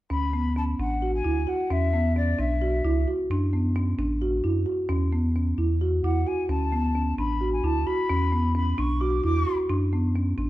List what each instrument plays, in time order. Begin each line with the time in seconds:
0.10 sub bass D2, marimba C#4, flute B5
0.33 marimba B3
0.56 marimba C#4, flute A5
0.79 sub bass A1, marimba D4, flute F#5
1.02 marimba F#4
1.14 flute G#5
1.24 sub bass D2, marimba E4
1.47 marimba F#4, flute F#5
1.70 sub bass E2, marimba C#4, flute E5
1.93 marimba B3
2.16 marimba C#4, flute D5
2.39 sub bass B1, marimba D4, flute E5
2.61 marimba F#4
2.84 sub bass C#2, marimba E4
3.08 marimba F#4
3.30 sub bass F#2, marimba D4
3.53 marimba B3
3.76 marimba C#4
3.98 sub bass A1, marimba D4
4.22 marimba F#4
4.44 sub bass F#2, marimba E4
4.66 marimba F#4
4.89 sub bass E2, marimba C#4
5.13 marimba B3
5.36 marimba C#4
5.58 sub bass E2, marimba E4
5.81 marimba F#4
6.03 sub bass E2, marimba E4, flute F#5
6.27 marimba F#4, flute G#5
6.49 sub bass D2, marimba C#4, flute A5
6.72 marimba B3
6.95 marimba C#4
7.18 sub bass A1, marimba D4, flute B5
7.41 marimba F#4
7.52 flute G#5
7.63 sub bass D2, marimba E4, flute A5
7.86 marimba F#4, flute B5
8.09 sub bass E2, marimba C#4
8.32 marimba B3
8.55 marimba C#4, flute B5
8.78 sub bass B1, marimba D4, flute C#6
9.00 marimba F#4, flute D6
9.24 sub bass E2, marimba E4, flute D6
9.47 marimba F#4
9.69 sub bass F#2, marimba D4
9.93 marimba B3
10.16 marimba C#4
10.38 sub bass A1, marimba D4